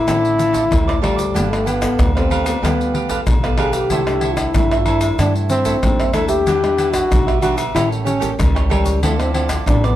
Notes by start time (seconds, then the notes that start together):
Already playing: E4
0.07 A1 D3 A3 C4 A4 C5 D5, pandeiro, tamborim, low agogo, shaker, surdo
0.25 pandeiro, shaker
0.38 F4 A4 C5 D5, pandeiro, shaker
0.53 F4 A4 C5 D5, pandeiro, shaker, surdo
0.71 D2 A2 A3 C4 F4, pandeiro, tamborim, high agogo, shaker, surdo
0.87 A4 C5 D5, pandeiro, tamborim, shaker
1.02 G3 A3 C4 F4 A4 C5 D5, pandeiro, tamborim, high agogo, surdo
1.16 A4 C5 D5, pandeiro, shaker, surdo
1.34 G1 G3 B3 D4 F4 G4 A4 B4 F5, pandeiro, low agogo, shaker, surdo
1.52 A3, pandeiro, tamborim, shaker
1.65 B3 D4 G4 B4 F5, pandeiro, low agogo, shaker
1.81 B3 F4 A4, pandeiro, tamborim, low agogo, shaker, surdo
1.99 D2 D3, pandeiro, tamborim, high agogo, shaker, surdo
2.15 B3 C4 F4 G4 A4 B4 F5, pandeiro, tamborim, shaker
2.30 D4 G4 B4 F5, pandeiro, high agogo, surdo
2.44 B3 F4 G4 A4 B4 F5, pandeiro, high agogo, shaker
2.62 D2 G3 B3 D4 F4 G4 A4 B4 F5, pandeiro, tamborim, low agogo, shaker, surdo
2.81 pandeiro, shaker
2.94 D4 G4 B4 F5, pandeiro
3.09 B3 D4 F4 G4 A4 B4 F5, pandeiro, shaker, surdo
3.27 B1 D3, pandeiro, tamborim, high agogo, shaker, surdo
3.43 B3 F4 G4 A4 B4 F5, pandeiro, tamborim, shaker
3.57 D4 G4 G#4 B4 F5, pandeiro, tamborim, high agogo
3.73 G4 B4 F5, pandeiro, shaker, surdo
3.90 C2 C3 A3 D4 E4 A4 C5 E5, pandeiro, low agogo, shaker, surdo
4.07 A3 D4 E4, pandeiro, tamborim, shaker
4.21 E4 A4 C5 E5, pandeiro, low agogo
4.32 F4
4.37 E4, pandeiro, tamborim, low agogo, shaker, surdo
4.54 G2 G3 A3 D4 E4, pandeiro, tamborim, high agogo, shaker, surdo
4.71 A4 C5 E5, pandeiro, tamborim, shaker
4.80 F4
4.86 E4 A4 C5 E5, pandeiro, high agogo, surdo
5.01 A4 C5 E5, pandeiro, high agogo, shaker
5.19 G2 C3 A3 D4 E4 A4 C5 E5, pandeiro, tamborim, low agogo, shaker, surdo
5.35 pandeiro, shaker
5.50 C4 E4 A4 C5 E5, pandeiro, shaker
5.65 A3 D4 E4 A4 C5 E5, pandeiro, shaker, surdo
5.83 D#2 G3 A3 D4 E4, pandeiro, tamborim, high agogo, shaker, surdo
6.00 A4 C5 E5, pandeiro, tamborim, shaker
6.13 A3 D4 E4 A4 C5 E5, pandeiro, tamborim, high agogo, shaker, surdo
6.28 G4 A4 C5 E5, pandeiro, shaker, surdo
6.46 E2 E3 G3 D4 F#4 G4 B4 E5, pandeiro, low agogo, shaker, surdo
6.63 G3 D4, pandeiro, tamborim, shaker
6.77 D4 B4 E5, pandeiro, low agogo, shaker
6.93 F#4, pandeiro, tamborim, low agogo, shaker, surdo
7.10 B1 B2 G3 D4 F#4, pandeiro, tamborim, high agogo, shaker, surdo
7.27 G4 B4 E5, pandeiro, tamborim, shaker
7.41 G3 D4 F#4 G4 B4 E5, pandeiro, high agogo, shaker, surdo
7.56 G4 B4 E5, pandeiro, high agogo, shaker
7.75 A1 A2 G3 A#3 C#4 E4 G4 A4 C#5 G5, pandeiro, tamborim, low agogo, shaker, surdo
7.92 pandeiro, shaker
8.05 C#4 G4 A4 C#5 G5, pandeiro, shaker
8.20 G3 A#3 C#4 G4 A4 C#5 G5, pandeiro, shaker, surdo
8.39 C#2 E3 G3 A#3 C#4, pandeiro, tamborim, high agogo, shaker, surdo
8.55 A4 C#5 G5, pandeiro, tamborim, shaker
8.70 G3 A#3 C#4 G4 A4 C#5 G5, pandeiro, tamborim, high agogo, surdo
8.84 A4 C#5 G5, pandeiro, shaker, surdo
9.02 D2 D3 F3 A3 C4 E4 F4 A4 C5 D5, pandeiro, low agogo, shaker, surdo
9.20 F3 C4 E4, pandeiro, tamborim, shaker
9.34 C4 F4 A4 C5 D5, pandeiro, low agogo
9.49 pandeiro, tamborim, low agogo, shaker, surdo
9.66 A1 A2 F3 C4 D4 E4, pandeiro, tamborim, high agogo, shaker, surdo
9.84 B3 A4 C5 D5, pandeiro, tamborim, shaker